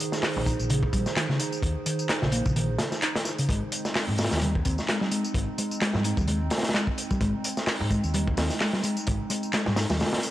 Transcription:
Already playing: ambient pad D#3 D#4 G#4 C5
0.00 closed hi-hat, tambourine
0.12 snare, tambourine
0.23 snare, clap, open hi-hat, tambourine
0.36 fingered electric bass A#1, low conga
0.46 picked electric bass D#4, kick, closed hi-hat, tambourine
0.59 fingered electric bass A#1, tambourine
0.70 picked electric bass C#3, closed hi-hat, tambourine, high conga
0.83 kick
0.93 fingered electric bass A#1, picked electric bass G3, kick, closed hi-hat, tambourine
1.06 snare, tambourine
1.16 picked electric bass D#3, snare, clap, closed hi-hat, tambourine
1.29 picked electric bass C#3, snare
1.39 picked electric bass D#4, closed hi-hat, tambourine
1.52 tambourine
1.63 fingered electric bass D#2, kick, closed hi-hat, tambourine
1.86 picked electric bass D#3, closed hi-hat, tambourine
1.99 tambourine
2.09 picked electric bass D#4, snare, clap, closed hi-hat, tambourine
2.22 fingered electric bass A#1, picked electric bass C#3, snare, low conga
2.32 picked electric bass A#3, closed hi-hat, tambourine
2.45 fingered electric bass A#1, picked electric bass C#3, kick, tambourine
2.56 picked electric bass D#3, closed hi-hat, tambourine, high conga
2.79 snare, closed hi-hat, tambourine, high conga
2.92 snare, tambourine
3.02 picked electric bass D#4, clap, closed hi-hat, tambourine
3.15 snare, closed hi-hat
3.25 snare, tambourine
3.38 picked electric bass C#3, closed hi-hat, tambourine
3.49 fingered electric bass G#1, picked electric bass G#3, ambient pad G#3 C4, kick, closed hi-hat, tambourine
3.72 closed hi-hat, tambourine
3.85 snare, tambourine
3.95 snare, clap, open hi-hat, tambourine
4.08 fingered electric bass G#2, low conga
4.17 picked electric bass G#3, snare, open hi-hat, tambourine
4.25 snare, open hi-hat
4.31 fingered electric bass D#2, snare, open hi-hat, tambourine
4.37 snare, open hi-hat
4.41 picked electric bass G3, closed hi-hat, tambourine, high conga
4.55 kick
4.65 fingered electric bass D#2, picked electric bass C4, kick, closed hi-hat, tambourine
4.78 snare, tambourine
4.88 picked electric bass G#3, snare, clap, closed hi-hat, tambourine
5.01 picked electric bass G3, snare
5.11 picked electric bass G#3, closed hi-hat, tambourine
5.24 tambourine
5.34 fingered electric bass G#1, kick, closed hi-hat, tambourine
5.58 picked electric bass G#3, closed hi-hat, tambourine
5.71 tambourine
5.81 picked electric bass G#3, snare, clap, closed hi-hat, tambourine
5.93 fingered electric bass G#2, picked electric bass G3, snare, low conga
6.04 picked electric bass D#4, closed hi-hat, tambourine
6.17 fingered electric bass D#2, picked electric bass G3, kick, tambourine
6.28 picked electric bass G#3, closed hi-hat, tambourine, high conga
6.50 snare, open hi-hat, tambourine
6.58 snare, open hi-hat
6.63 snare, open hi-hat, tambourine
6.69 snare, open hi-hat
6.74 picked electric bass G#3, snare, clap, closed hi-hat, tambourine
6.87 kick
6.98 closed hi-hat, tambourine
7.11 picked electric bass G3, kick, tambourine
7.21 fingered electric bass G#1, picked electric bass G#3, kick, closed hi-hat, tambourine
7.44 closed hi-hat, tambourine
7.57 snare, tambourine
7.67 snare, clap, open hi-hat, tambourine
7.81 fingered electric bass G#2, low conga
7.91 picked electric bass G#3, kick, closed hi-hat, tambourine
8.04 fingered electric bass D#2, tambourine
8.14 picked electric bass G3, closed hi-hat, tambourine, high conga
8.28 kick
8.37 fingered electric bass D#2, picked electric bass C4, snare, open hi-hat, tambourine
8.50 snare, tambourine
8.60 picked electric bass G#3, snare, clap, open hi-hat, tambourine
8.73 picked electric bass G3, snare
8.84 picked electric bass G#3, closed hi-hat, tambourine
8.97 tambourine
9.07 fingered electric bass G#1, kick, closed hi-hat, tambourine
9.30 picked electric bass G#3, closed hi-hat, tambourine
9.43 tambourine
9.53 picked electric bass G#3, snare, clap, closed hi-hat, tambourine
9.66 fingered electric bass G#2, picked electric bass G3, snare, low conga
9.76 picked electric bass D#4, snare, open hi-hat, tambourine
9.90 fingered electric bass D#2, picked electric bass G3, snare, open hi-hat, tambourine
10.00 picked electric bass G#3, snare, open hi-hat, tambourine, high conga
10.06 snare, open hi-hat
10.13 snare, open hi-hat
10.18 snare, open hi-hat
10.23 closed hi-hat, tambourine

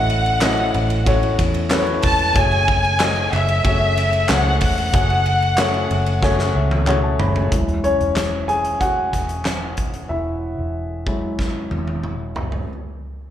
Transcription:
Already playing: fingered electric bass A1, upright piano A3 C#4 E4 F#4 A4 D#5 E5, violin section F#5
0.10 ride
0.26 ride
0.41 upright piano A3 C#4 E4 F#4 D#5, snare, clap, ride
0.57 ride
0.74 fingered electric bass A1, ride
0.90 ride
1.06 upright piano A3 C#4 E4 F#4 C#5, kick, ride
1.23 ride
1.38 fingered electric bass E2, kick, snare, ride
1.54 ride
1.70 upright piano A3 C#4 E4 F#4 B4, snare, clap, ride
1.78 upright piano C#5
1.87 ride
2.03 fingered electric bass E1, violin section A5, kick, open hi-hat, ride
2.19 ride
2.35 fingered electric bass F#1, upright piano C#3 A3 C#4 F#4 G#4 C#5, violin section G#5, kick, hi-hat pedal, ride
2.52 ride
2.68 kick, ride
2.84 ride
3.00 upright piano A3 C#4 F#4 G#4 D#5, snare, clap, ride
3.16 ride
3.33 fingered electric bass F#1, violin section E5, clap, ride
3.48 ride
3.64 fingered electric bass F#1, upright piano A3 C#4 F#4 G#4 C#5, kick, ride
3.97 snare, ride
4.13 ride
4.29 fingered electric bass C#2, upright piano A3 C#4 F#4 G#4 C#5, violin section F#5, snare, clap, ride
4.61 fingered electric bass E1, violin section F#5, kick, open hi-hat, ride
4.78 ride
4.93 fingered electric bass F#1, upright piano C#3 A3 C#4 F#4 G#4 C#5, kick, hi-hat pedal, ride
5.10 ride
5.26 ride
5.42 ride
5.58 upright piano A3 C#4 F#4 G#4 C#5, snare, clap, ride
5.74 ride
5.91 fingered electric bass F#1, ride
6.06 ride
6.22 upright piano A3 C#4 F#4 G#4 C#5, kick, snare
6.39 snare
6.55 fingered electric bass C#2, upright piano E5
6.71 high tom
6.87 upright piano A3 C#4 F#4 G#4 C#5 F#5, clap, mid tom
7.03 upright piano A5
7.20 fingered electric bass F#1, upright piano B5, floor tom
7.36 floor tom
7.52 fingered electric bass E1, upright piano F#3 G#3 E4, kick, closed hi-hat
7.69 closed hi-hat
7.84 upright piano C#4 C#5, closed hi-hat
8.01 fingered electric bass E1, closed hi-hat
8.16 snare, clap, closed hi-hat
8.48 upright piano G#4 G#5, closed hi-hat
8.65 closed hi-hat
8.80 upright piano F#4 F#5, kick, closed hi-hat
9.13 fingered electric bass E1, kick, snare, closed hi-hat
9.29 closed hi-hat
9.45 snare, clap, closed hi-hat
9.77 kick, closed hi-hat
9.94 closed hi-hat
10.09 fingered electric bass E1, upright piano E4 E5
10.59 fingered electric bass E1
11.07 upright piano F#3 G#3 E4, kick
11.39 kick, snare
11.71 fingered electric bass E1, high tom
11.88 high tom
12.04 mid tom
12.36 fingered electric bass F#1, floor tom
12.52 floor tom

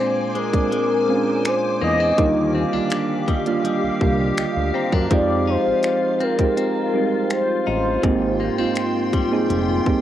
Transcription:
Already playing: clean electric guitar A#2 C4, synth keys G#3 C4 D4 F4, soft synth lead C5, ambient pad C5 G#5 D6
0.35 clean electric guitar G#3, soft synth lead A#4, closed hi-hat
0.54 synth keys G#3 C4 D4 G#4, kick, closed hi-hat
0.72 clean electric guitar G#3, closed hi-hat
1.08 synth keys G#3 C4 C#4 F4
1.16 synth keys D4
1.45 soft synth lead C5, finger snap, closed hi-hat
1.81 analog synth bass E2, clean electric guitar A#3, soft synth lead D#5
2.00 clean electric guitar C4
2.18 analog synth bass D#2, synth keys D3 G3 A#3 F4, clean electric guitar D#3, ambient pad G4 F5, kick, closed hi-hat
2.55 clean electric guitar C4
2.73 analog synth bass C2, synth keys G3 A#3 D4 F4, clean electric guitar D4
2.90 finger snap, closed hi-hat
3.28 clean electric guitar G3, synth keys D#5, kick, closed hi-hat
3.46 synth keys G3 A#3 D4 F4 F5, closed hi-hat
3.64 clean electric guitar G3, synth keys D#5, closed hi-hat
3.84 analog synth bass C2
4.01 analog synth bass C2, synth keys D3 G3 A#3 F4 G5, kick
4.20 synth keys F5
4.37 analog synth bass D2, synth keys D#5 G5, finger snap, closed hi-hat
4.57 analog synth bass D2
4.74 clean electric guitar C4, synth keys C5 A#5
4.92 analog synth bass F#2, clean electric guitar D4, synth keys A#4, kick
5.10 analog synth bass F2, clean electric guitar F3, synth keys G#3 C4 D#4 G4, ambient pad F4, soft synth lead D5, kick, closed hi-hat
5.47 clean electric guitar D#4, soft synth lead C5
5.66 analog synth bass A1
5.83 finger snap, closed hi-hat
6.20 clean electric guitar C4, soft synth lead A#4, closed hi-hat
6.39 synth keys G#3 C4 D#4 G4, kick, closed hi-hat
6.57 clean electric guitar C4, closed hi-hat
6.94 synth keys G3 C4 D#4 G4
7.00 synth keys G#3
7.30 soft synth lead C5, finger snap, closed hi-hat
7.67 analog synth bass A1, clean electric guitar D#4, soft synth lead C5
8.03 analog synth bass G#1, clean electric guitar G#2, synth keys A#3 C4 D#4 G4, ambient pad G5 C6, kick, closed hi-hat
8.40 clean electric guitar A#3
8.58 analog synth bass F1, synth keys A#3 C4 D#4 F4, clean electric guitar C4
8.76 finger snap, closed hi-hat
9.13 clean electric guitar G3, kick, closed hi-hat
9.31 synth keys A#3 C4 D#4 G#4
9.50 analog synth bass F1, clean electric guitar G3, closed hi-hat
9.86 analog synth bass G1, synth keys A#3 C4 D#4 G4, kick

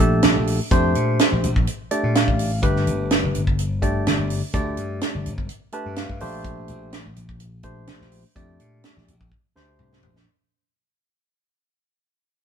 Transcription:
Already playing: slap bass A#1
0.00 tine electric piano A3 D4 G4 A4
0.23 slap bass A#1, snare, closed hi-hat
0.36 slap bass A#1
0.47 open hi-hat
0.71 slap bass F2, tine electric piano A3 D4 G4 C5, kick, closed hi-hat
0.95 slap bass A#2, closed hi-hat
1.19 snare, closed hi-hat
1.32 slap bass A#1
1.43 slap bass A#1, closed hi-hat
1.56 kick
1.67 closed hi-hat
1.91 tine electric piano A3 D4 G4 D5, closed hi-hat
2.03 slap bass A#2
2.15 tine electric piano F5, snare, closed hi-hat
2.28 slap bass A1, kick
2.39 open hi-hat
2.62 slap bass G1, tine electric piano A3 D4 G4 B4, kick, closed hi-hat
2.76 snare
2.87 slap bass G1, closed hi-hat
3.11 snare, closed hi-hat
3.24 slap bass F#1
3.35 slap bass G1, closed hi-hat
3.47 kick
3.59 closed hi-hat
3.82 tine electric piano A3 D4 G4 D5, kick, closed hi-hat
4.06 slap bass G1, snare, closed hi-hat
4.18 slap bass G1
4.30 open hi-hat
4.54 slap bass D2, tine electric piano A3 D4 G4 D5, kick, closed hi-hat
4.77 slap bass G2, closed hi-hat
5.01 snare, closed hi-hat
5.15 slap bass G1
5.26 slap bass G1, closed hi-hat
5.38 kick
5.49 closed hi-hat
5.72 tine electric piano A3 D4 G4 B4 A5, closed hi-hat
5.86 slap bass G2
5.96 tine electric piano F5, snare, closed hi-hat
6.09 slap bass G2, kick
6.20 slap bass A#1, tine electric piano A3 D4 G4 C5, open hi-hat
6.45 kick, closed hi-hat
6.68 slap bass A#1, closed hi-hat
6.93 snare, closed hi-hat
7.06 slap bass A1
7.16 slap bass A#1, closed hi-hat
7.29 kick
7.40 closed hi-hat
7.63 tine electric piano A3 D4 G4 C5, kick, closed hi-hat
7.87 slap bass A#1, snare, closed hi-hat
8.01 slap bass A#1, snare
8.12 open hi-hat
8.35 slap bass F2, tine electric piano A3 D4 G4 D5, kick, closed hi-hat
8.60 slap bass A#2, closed hi-hat
8.84 snare, closed hi-hat
8.97 slap bass A#1, snare
9.08 slap bass A#1, closed hi-hat
9.21 kick
9.32 kick
9.56 slap bass D2, tine electric piano A3 D4 G4 C5, snare
9.79 slap bass C2, mid tom
9.93 snare
10.03 slap bass A#1, floor tom
10.16 snare

